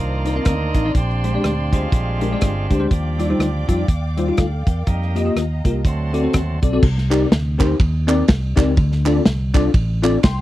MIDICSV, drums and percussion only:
0, 0, Header, 1, 2, 480
1, 0, Start_track
1, 0, Tempo, 488998
1, 925, Time_signature, 4, 2, 24, 8
1, 10220, End_track
2, 0, Start_track
2, 0, Title_t, "Drums"
2, 252, Note_on_c, 9, 42, 83
2, 350, Note_off_c, 9, 42, 0
2, 443, Note_on_c, 9, 42, 91
2, 449, Note_on_c, 9, 37, 101
2, 452, Note_on_c, 9, 36, 95
2, 541, Note_off_c, 9, 42, 0
2, 548, Note_off_c, 9, 37, 0
2, 550, Note_off_c, 9, 36, 0
2, 731, Note_on_c, 9, 36, 83
2, 731, Note_on_c, 9, 42, 62
2, 829, Note_off_c, 9, 36, 0
2, 830, Note_off_c, 9, 42, 0
2, 930, Note_on_c, 9, 42, 67
2, 931, Note_on_c, 9, 36, 86
2, 1029, Note_off_c, 9, 36, 0
2, 1029, Note_off_c, 9, 42, 0
2, 1075, Note_on_c, 9, 37, 32
2, 1173, Note_off_c, 9, 37, 0
2, 1218, Note_on_c, 9, 42, 77
2, 1316, Note_off_c, 9, 42, 0
2, 1415, Note_on_c, 9, 37, 97
2, 1418, Note_on_c, 9, 42, 60
2, 1513, Note_off_c, 9, 37, 0
2, 1516, Note_off_c, 9, 42, 0
2, 1694, Note_on_c, 9, 36, 71
2, 1697, Note_on_c, 9, 42, 60
2, 1792, Note_off_c, 9, 36, 0
2, 1795, Note_off_c, 9, 42, 0
2, 1888, Note_on_c, 9, 36, 102
2, 1892, Note_on_c, 9, 42, 69
2, 1986, Note_off_c, 9, 36, 0
2, 1991, Note_off_c, 9, 42, 0
2, 2172, Note_on_c, 9, 42, 68
2, 2270, Note_off_c, 9, 42, 0
2, 2368, Note_on_c, 9, 42, 93
2, 2374, Note_on_c, 9, 37, 108
2, 2377, Note_on_c, 9, 36, 89
2, 2466, Note_off_c, 9, 42, 0
2, 2472, Note_off_c, 9, 37, 0
2, 2475, Note_off_c, 9, 36, 0
2, 2656, Note_on_c, 9, 36, 85
2, 2656, Note_on_c, 9, 42, 57
2, 2754, Note_off_c, 9, 42, 0
2, 2755, Note_off_c, 9, 36, 0
2, 2856, Note_on_c, 9, 36, 91
2, 2859, Note_on_c, 9, 42, 64
2, 2954, Note_off_c, 9, 36, 0
2, 2958, Note_off_c, 9, 42, 0
2, 3137, Note_on_c, 9, 42, 78
2, 3235, Note_off_c, 9, 42, 0
2, 3339, Note_on_c, 9, 37, 90
2, 3342, Note_on_c, 9, 42, 64
2, 3437, Note_off_c, 9, 37, 0
2, 3440, Note_off_c, 9, 42, 0
2, 3619, Note_on_c, 9, 36, 76
2, 3622, Note_on_c, 9, 42, 65
2, 3717, Note_off_c, 9, 36, 0
2, 3720, Note_off_c, 9, 42, 0
2, 3812, Note_on_c, 9, 36, 92
2, 3816, Note_on_c, 9, 42, 72
2, 3911, Note_off_c, 9, 36, 0
2, 3915, Note_off_c, 9, 42, 0
2, 4099, Note_on_c, 9, 42, 78
2, 4197, Note_off_c, 9, 42, 0
2, 4293, Note_on_c, 9, 42, 89
2, 4299, Note_on_c, 9, 37, 105
2, 4302, Note_on_c, 9, 36, 87
2, 4391, Note_off_c, 9, 42, 0
2, 4397, Note_off_c, 9, 37, 0
2, 4401, Note_off_c, 9, 36, 0
2, 4582, Note_on_c, 9, 36, 88
2, 4583, Note_on_c, 9, 42, 61
2, 4587, Note_on_c, 9, 37, 29
2, 4680, Note_off_c, 9, 36, 0
2, 4681, Note_off_c, 9, 42, 0
2, 4685, Note_off_c, 9, 37, 0
2, 4778, Note_on_c, 9, 42, 61
2, 4781, Note_on_c, 9, 36, 90
2, 4876, Note_off_c, 9, 42, 0
2, 4879, Note_off_c, 9, 36, 0
2, 4930, Note_on_c, 9, 37, 36
2, 5028, Note_off_c, 9, 37, 0
2, 5067, Note_on_c, 9, 42, 72
2, 5165, Note_off_c, 9, 42, 0
2, 5267, Note_on_c, 9, 37, 90
2, 5270, Note_on_c, 9, 42, 69
2, 5365, Note_off_c, 9, 37, 0
2, 5368, Note_off_c, 9, 42, 0
2, 5545, Note_on_c, 9, 36, 71
2, 5547, Note_on_c, 9, 42, 61
2, 5643, Note_off_c, 9, 36, 0
2, 5645, Note_off_c, 9, 42, 0
2, 5739, Note_on_c, 9, 36, 87
2, 5746, Note_on_c, 9, 42, 69
2, 5837, Note_off_c, 9, 36, 0
2, 5844, Note_off_c, 9, 42, 0
2, 6028, Note_on_c, 9, 42, 78
2, 6127, Note_off_c, 9, 42, 0
2, 6218, Note_on_c, 9, 42, 93
2, 6224, Note_on_c, 9, 37, 105
2, 6227, Note_on_c, 9, 36, 88
2, 6316, Note_off_c, 9, 42, 0
2, 6322, Note_off_c, 9, 37, 0
2, 6325, Note_off_c, 9, 36, 0
2, 6504, Note_on_c, 9, 42, 57
2, 6505, Note_on_c, 9, 36, 84
2, 6602, Note_off_c, 9, 42, 0
2, 6603, Note_off_c, 9, 36, 0
2, 6700, Note_on_c, 9, 49, 90
2, 6701, Note_on_c, 9, 36, 106
2, 6798, Note_off_c, 9, 49, 0
2, 6800, Note_off_c, 9, 36, 0
2, 6849, Note_on_c, 9, 38, 41
2, 6947, Note_off_c, 9, 38, 0
2, 6989, Note_on_c, 9, 39, 108
2, 6990, Note_on_c, 9, 51, 67
2, 7087, Note_off_c, 9, 39, 0
2, 7089, Note_off_c, 9, 51, 0
2, 7184, Note_on_c, 9, 38, 109
2, 7187, Note_on_c, 9, 51, 61
2, 7282, Note_off_c, 9, 38, 0
2, 7285, Note_off_c, 9, 51, 0
2, 7462, Note_on_c, 9, 36, 77
2, 7464, Note_on_c, 9, 39, 108
2, 7466, Note_on_c, 9, 51, 62
2, 7560, Note_off_c, 9, 36, 0
2, 7562, Note_off_c, 9, 39, 0
2, 7564, Note_off_c, 9, 51, 0
2, 7654, Note_on_c, 9, 36, 123
2, 7662, Note_on_c, 9, 51, 71
2, 7752, Note_off_c, 9, 36, 0
2, 7760, Note_off_c, 9, 51, 0
2, 7938, Note_on_c, 9, 39, 110
2, 7941, Note_on_c, 9, 51, 68
2, 8036, Note_off_c, 9, 39, 0
2, 8039, Note_off_c, 9, 51, 0
2, 8127, Note_on_c, 9, 51, 89
2, 8133, Note_on_c, 9, 38, 127
2, 8138, Note_on_c, 9, 36, 106
2, 8225, Note_off_c, 9, 51, 0
2, 8231, Note_off_c, 9, 38, 0
2, 8236, Note_off_c, 9, 36, 0
2, 8409, Note_on_c, 9, 51, 66
2, 8413, Note_on_c, 9, 38, 38
2, 8414, Note_on_c, 9, 36, 104
2, 8421, Note_on_c, 9, 39, 109
2, 8508, Note_off_c, 9, 51, 0
2, 8512, Note_off_c, 9, 36, 0
2, 8512, Note_off_c, 9, 38, 0
2, 8519, Note_off_c, 9, 39, 0
2, 8608, Note_on_c, 9, 51, 66
2, 8612, Note_on_c, 9, 36, 117
2, 8706, Note_off_c, 9, 51, 0
2, 8710, Note_off_c, 9, 36, 0
2, 8752, Note_on_c, 9, 38, 41
2, 8850, Note_off_c, 9, 38, 0
2, 8892, Note_on_c, 9, 39, 96
2, 8893, Note_on_c, 9, 51, 69
2, 8990, Note_off_c, 9, 39, 0
2, 8991, Note_off_c, 9, 51, 0
2, 9084, Note_on_c, 9, 38, 105
2, 9087, Note_on_c, 9, 51, 70
2, 9183, Note_off_c, 9, 38, 0
2, 9186, Note_off_c, 9, 51, 0
2, 9368, Note_on_c, 9, 51, 64
2, 9369, Note_on_c, 9, 36, 91
2, 9373, Note_on_c, 9, 39, 125
2, 9467, Note_off_c, 9, 36, 0
2, 9467, Note_off_c, 9, 51, 0
2, 9472, Note_off_c, 9, 39, 0
2, 9562, Note_on_c, 9, 36, 111
2, 9562, Note_on_c, 9, 51, 76
2, 9660, Note_off_c, 9, 36, 0
2, 9660, Note_off_c, 9, 51, 0
2, 9848, Note_on_c, 9, 51, 70
2, 9858, Note_on_c, 9, 39, 106
2, 9946, Note_off_c, 9, 51, 0
2, 9956, Note_off_c, 9, 39, 0
2, 10043, Note_on_c, 9, 51, 96
2, 10049, Note_on_c, 9, 38, 127
2, 10050, Note_on_c, 9, 36, 95
2, 10141, Note_off_c, 9, 51, 0
2, 10148, Note_off_c, 9, 36, 0
2, 10148, Note_off_c, 9, 38, 0
2, 10220, End_track
0, 0, End_of_file